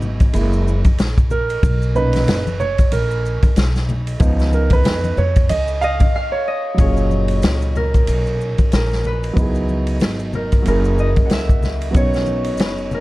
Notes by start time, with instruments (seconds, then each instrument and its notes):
Already playing: upright bass G#1, grand piano F#3 B3 D#4 E4
0.02 low conga, maracas
0.20 kick, ride, maracas
0.33 upright bass F#1, grand piano G#3 A#3 E4, ride, maracas
0.53 maracas
0.68 maracas
0.84 muted upright bass stroke, kick, ride, high conga, maracas
0.98 upright bass A#1, snare, hi-hat pedal, ride, maracas
1.18 kick, maracas
1.30 grand piano A#4, low conga, maracas
1.50 ride, maracas
1.63 upright bass B1, kick, ride, maracas
1.82 maracas
1.95 grand piano A#2 C#4 D#4 B4, high conga, maracas
2.13 snare, ride, high conga, maracas
2.27 upright bass F#1, snare, hi-hat pedal, ride, low conga, maracas
2.47 high conga, maracas
2.60 grand piano C#5, low conga, maracas
2.78 kick, ride, maracas
2.92 upright bass A#1, grand piano A#4, ride, maracas
3.11 maracas
3.26 maracas
3.42 muted upright bass stroke, kick, ride, high conga, maracas
3.56 upright bass B1, snare, hi-hat pedal, ride, maracas
3.76 snare, maracas
3.89 low conga, maracas
4.07 ride, maracas
4.20 upright bass C#2, grand piano F3 B3 D#4, kick, ride, maracas
4.39 snare, maracas
4.53 grand piano A#4, high conga, maracas
4.70 grand piano B4, kick, ride, high conga, maracas
4.84 upright bass F2, snare, hi-hat pedal, ride, low conga, maracas
5.04 high conga, maracas
5.17 upright bass F2, grand piano C#5, low conga, maracas
5.36 kick, ride, maracas
5.49 upright bass C#2, grand piano D#5, ride, high conga, maracas
5.67 maracas
5.81 harp D#5, grand piano F5, maracas
6.00 muted upright bass stroke, kick, ride, high conga, maracas
6.16 harp F5
6.32 grand piano C#5
6.48 harp D#5
6.74 grand piano A#2 F#3, ride
6.78 upright bass F#1, grand piano C#4 F4 G#4, harp C#5, kick, maracas
6.97 maracas
7.11 high conga, maracas
7.28 ride, maracas
7.42 upright bass C#2, snare, hi-hat pedal, ride, maracas
7.62 maracas
7.76 harp A#4, low conga, maracas
7.94 kick, ride, maracas
8.07 upright bass B1, ride, maracas
8.26 maracas
8.41 maracas
8.58 kick, ride, high conga, maracas
8.72 upright bass A#1, harp A#4, snare, hi-hat pedal, ride, maracas
8.91 snare, maracas
9.04 harp B4, low conga, maracas
9.23 ride, maracas
9.33 upright bass C#2, grand piano F#3 B3 D#4, kick, ride
9.38 grand piano E4 G#4, maracas
9.55 maracas
9.69 high conga, maracas
9.87 ride, maracas
10.00 snare, hi-hat pedal, ride, maracas
10.19 maracas
10.33 harp A#4, low conga, maracas
10.52 kick, ride, maracas
10.62 upright bass F#1, grand piano F#3 A#3 C#4, ride
10.67 grand piano E4 G#4, harp A#4, maracas
10.84 maracas
10.98 harp D#5, maracas
11.16 muted upright bass stroke, kick, ride, high conga, maracas
11.26 harp F#5
11.30 upright bass C#2, harp E5, snare, hi-hat pedal, ride, maracas
11.49 kick, maracas
11.63 snare, low conga, maracas
11.82 ride, maracas
11.91 grand piano F#3 B3 C#4, ride
11.95 upright bass B1, grand piano D#4 C#5, harp C#5, kick, maracas
12.14 snare, maracas
12.26 high conga, maracas
12.44 ride, maracas
12.58 upright bass F#1, harp B4, snare, hi-hat pedal, ride, maracas
12.78 maracas
12.91 harp A#4, low conga, maracas